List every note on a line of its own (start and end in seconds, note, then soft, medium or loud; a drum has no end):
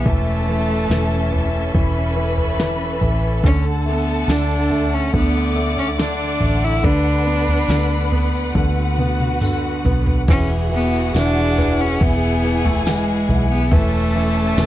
0.05 0.86 E1 loud
0.05 0.47 E3 medium
0.05 1.75 A3 medium
0.05 3.41 C#4 medium
0.05 1.71 A4 medium
0.05 6.80 A4 medium
0.05 3.41 E5 medium
0.05 1.71 A5 medium
0.05 kick medium
0.05 floor tom medium
0.48 0.89 E3 medium
0.90 1.70 E1 loud
0.90 1.30 E3 medium
0.90 snare loud
1.32 1.72 E3 medium
1.32 floor tom medium
1.74 2.98 E1 medium
1.74 2.15 E3 soft
1.74 3.40 B4 medium
1.74 3.40 B5 medium
1.74 kick medium
1.74 floor tom medium
2.16 2.57 E3 medium
2.38 floor tom medium
2.59 3.00 E3 medium
2.59 snare loud
3.01 3.41 A1 medium
3.01 3.43 E3 medium
3.01 floor tom medium
3.44 4.25 D2 medium
3.44 4.27 D3 medium
3.44 10.25 D3 medium
3.44 3.64 C#4 medium
3.44 5.10 A4 medium
3.44 10.25 F#5 medium
3.44 5.10 A5 medium
3.44 kick medium
3.44 floor tom medium
3.86 4.69 A3 medium
3.86 4.31 B3 medium
4.28 5.09 D2 loud
4.28 5.11 D3 medium
4.28 4.95 D4 medium
4.28 snare loud
4.28 tambourine medium
4.70 5.54 A3 medium
4.70 floor tom medium
4.93 5.14 C#4 medium
5.13 6.37 D2 loud
5.13 5.97 D3 medium
5.13 5.74 B3 loud
5.13 6.80 D5 loud
5.13 6.80 D6 loud
5.13 kick medium
5.13 floor tom medium
5.56 6.39 A3 medium
5.78 5.88 C#4 medium
5.78 floor tom medium
5.98 6.81 D3 medium
5.98 6.66 D4 medium
5.98 snare loud
5.98 tambourine medium
6.40 6.80 A1 loud
6.40 6.82 A3 medium
6.40 floor tom medium
6.64 6.87 E4 medium
6.83 7.65 D2 medium
6.83 7.68 D3 medium
6.83 8.56 D4 loud
6.83 8.51 B4 medium
6.83 10.25 B4 medium
6.83 8.52 B5 medium
6.83 kick medium
6.83 floor tom medium
7.27 8.10 B3 medium
7.48 floor tom medium
7.68 8.51 D2 medium
7.68 8.54 D3 medium
7.68 snare loud
7.68 tambourine medium
8.12 8.98 B3 medium
8.12 floor tom medium
8.55 9.81 D2 loud
8.55 9.40 D3 soft
8.55 10.25 F#4 medium
8.55 10.25 F#5 medium
8.55 kick medium
8.55 high tom medium
8.98 9.84 B3 soft
8.98 mid tom medium
9.20 mid tom medium
9.41 10.26 D3 medium
9.41 mid tom medium
9.41 tambourine medium
9.85 10.25 B1 medium
9.85 10.27 B3 medium
9.85 floor tom medium
10.06 floor tom medium
10.28 11.11 E1 loud
10.28 10.70 E3 medium
10.28 10.49 C#4 loud
10.28 13.68 E4 medium
10.28 11.98 F#4 medium
10.28 13.68 G#4 medium
10.28 13.68 F#5 medium
10.28 11.98 F#5 medium
10.28 kick medium
10.28 floor tom loud
10.28 crash loud
10.72 11.14 E3 medium
10.72 11.13 B3 medium
11.14 11.97 E1 medium
11.14 11.57 E3 medium
11.14 11.82 D4 loud
11.14 snare loud
11.14 tambourine medium
11.58 12.00 E3 medium
11.58 floor tom medium
11.80 12.03 C#4 loud
12.00 13.25 E1 medium
12.00 12.43 E3 medium
12.00 12.66 B3 loud
12.00 13.68 G#4 medium
12.00 13.68 G#5 loud
12.00 kick medium
12.00 floor tom medium
12.44 12.86 E3 medium
12.65 12.86 A3 medium
12.65 floor tom medium
12.86 13.28 E3 medium
12.86 13.47 G#3 medium
12.86 snare loud
12.86 tambourine medium
13.29 13.69 B1 loud
13.29 13.71 E3 medium
13.29 floor tom medium
13.51 13.73 B3 medium
13.71 14.53 E1 loud
13.71 14.14 E3 medium
13.71 14.66 A3 loud
13.71 14.66 C#4 medium
13.71 14.66 A4 medium
13.71 14.66 E5 medium
13.71 14.66 A5 medium
13.71 kick medium
13.71 floor tom loud
14.16 14.56 E3 medium
14.57 14.66 E1 loud
14.57 14.66 E3 medium
14.57 snare loud
14.57 tambourine medium